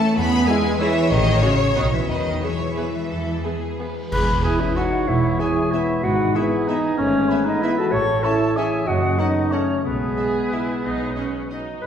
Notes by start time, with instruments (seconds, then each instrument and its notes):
Already playing: harp E3 A4 C#5 E5 A5 C#6, cello section A3, french horn section A3, violin section A4 A5
0.01 harp E4
0.09 harp C#4
0.16 double bass section E2, harp E3, french horn section B3, cello section B3, violin section G#4 B5
0.23 harp B3
0.31 harp G#4
0.39 harp B4
0.46 cello section G#3, french horn section G#3, viola section E4 G#4, violin section B4 G#5, harp E5
0.55 harp G#5
0.63 harp B5
0.72 harp G#5
0.79 french horn section E3, cello section E3, viola section E4 G#4, violin section C#5 E5, harp E5
0.88 harp G#4
0.96 harp E4
1.03 harp B3
1.09 double bass section A1, harp A2, french horn section D#3, cello section D#3, violin section D#5
1.18 harp A3
1.25 harp C#4
1.33 harp F#4
1.41 french horn section C#3, cello section C#3, harp C#4, viola section C#4 F#4, violin section C#5
1.49 harp C#5
1.58 harp F#5
1.66 harp C#5
1.75 double bass section B1, harp B2, french horn section D#3, cello section D#3, viola section B3 F#4, violin section D#5
1.83 harp F#3
1.91 french horn section E3, cello section E3, harp B4, violin section E5
1.99 harp F#4
2.08 double bass section E2, cello section D#3, french horn section D#3, harp E3, violin section B4 D#5
2.16 harp G#3
2.25 harp B4
2.33 harp G#4
2.41 cello section E3, french horn section E3, viola section B3 G#4, harp B4, violin section C#5 E5
2.51 harp B5
2.60 harp G#5
2.68 harp B5
2.77 viola section B3 G#4, violin section B4, harp B4
2.86 harp B3
2.94 harp G#3
3.02 harp B3
3.09 double bass section E2, harp E3, violin section A4
3.18 harp G#3
3.27 harp B4
3.35 harp G#4
3.44 viola section B3 G#4, violin section G#4, harp B4
3.52 harp B5
3.61 harp G#5
3.70 harp B5
3.79 viola section B3 G#4, violin section B4, harp B4
3.88 harp B3
3.97 harp G#3
4.04 harp B3
4.11 double bass section E1, cello section E2, harp E3, french horn section G#4, clarinet B4, flute B5, concert bass drum, crash
4.19 harp G#3
4.27 harp B4
4.35 harp G#4
4.43 viola section B3, french horn section E4, clarinet G#4, cor anglais B4, harp B4, violin section E5 G#5, flute G#5
4.60 french horn section C#4, clarinet E4, flute E5, harp G#5
4.75 viola section B3, french horn section D#4, clarinet F#4, harp B4, cor anglais C#5, violin section E5 G#5, flute F#5
4.84 harp B3
4.92 harp G#3
4.99 harp B3
5.07 double bass section E1, cello section E2, harp E3, french horn section B3, clarinet E4, flute E5
5.15 harp G#3
5.23 harp B4
5.31 harp G#4
5.39 viola section B3, french horn section E4, clarinet G#4, harp B4, violin section E5 G#5, flute G#5
5.47 harp B5
5.55 harp G#5
5.64 harp B5
5.71 viola section B3, french horn section B3, clarinet E4, harp B4, flute E5, violin section E5 G#5
5.80 harp B3
5.88 harp G#3
5.95 harp B3
6.03 double bass section G#1, harp G#2, cello section G#2, french horn section D#4, clarinet F#4, cor anglais B4, flute F#5
6.11 harp E3
6.18 harp B3
6.34 viola section B3, french horn section B3, clarinet E4, harp G#4, cor anglais G#4, violin section E5 B5, flute E5
6.43 harp B4
6.51 harp B5
6.59 harp B4
6.67 viola section B3, french horn section B3, clarinet D#4, harp G#4, flute D#5, violin section E5 B5
6.76 harp B3
6.83 harp G#3
6.91 harp E3
6.97 double bass section G#1, harp G#2, cello section G#2, french horn section A3, clarinet C#4, cor anglais C#5, flute C#5
7.06 harp G#3
7.14 harp B3
7.22 harp B4
7.29 viola section B3, harp G#4, cor anglais B4, violin section E5 B5
7.39 harp B4
7.45 french horn section B3, clarinet D#4, flute D#5, harp B5
7.55 harp B4
7.62 french horn section B3, viola section B3, clarinet E4, harp G#4, violin section E5 B5, flute E5
7.71 harp B3
7.77 harp G#3, french horn section F#4, clarinet A4, flute A5
7.85 harp E3
7.92 double bass section A1, harp A2, cello section A2, french horn section A4, cor anglais A4, clarinet C#5, flute C#6
8.00 harp E3
8.07 harp E4
8.15 harp C#5
8.23 viola section C#4, harp E4, french horn section E4, clarinet A4, cor anglais C#5, violin section E5 A5, flute A5
8.31 harp E5
8.39 harp C#6
8.48 harp E5
8.56 viola section C#4, french horn section E4, clarinet G#4, harp C#5, cor anglais E5, violin section E5 A5, flute G#5
8.65 harp E4
8.72 harp C#4
8.80 harp E3
8.86 double bass section F#1, harp F#2, cello section F#2, french horn section C#4, clarinet F#4, cor anglais D#5, flute F#5
8.94 harp C#3
9.02 harp A4
9.10 harp C#5
9.18 french horn section B3, viola section C#4, clarinet D#4, harp A4, flute D#5, violin section F#5 A5
9.26 harp A5
9.35 harp C#6
9.43 harp A5
9.51 french horn section A3, viola section C#4, clarinet C#4, cor anglais C#5, harp C#5, flute C#5, violin section F#5 A5
9.59 harp A4
9.67 harp C#4
9.76 harp C#3
9.84 double bass section B1, harp B2, cello section B2, french horn section G#3, clarinet B3, cor anglais G#4, flute B4
9.92 harp B3
10.00 harp G#4
10.08 harp B4
10.16 viola section G#4, harp E5, violin section E5 G#5
10.25 harp G#5
10.34 harp B5
10.42 harp G#5
10.50 viola section E4, harp E5, violin section E5 G#5
10.58 harp G#4
10.67 harp E4
10.75 harp B3
10.83 double bass section B1, harp B2, cello section B2, viola section D#4
10.91 harp F#3
10.99 harp F#4
11.16 viola section C#4, violin section D#5 F#5, harp D#5
11.24 harp F#5
11.33 harp B5
11.41 harp F#5
11.50 viola section D#4, harp D#5, violin section D#5 F#5
11.58 harp F#4
11.66 harp D#4
11.73 harp F#3
11.81 double bass section G#1, harp G#2, cello section G#2, french horn section G#4, clarinet B4, flute B5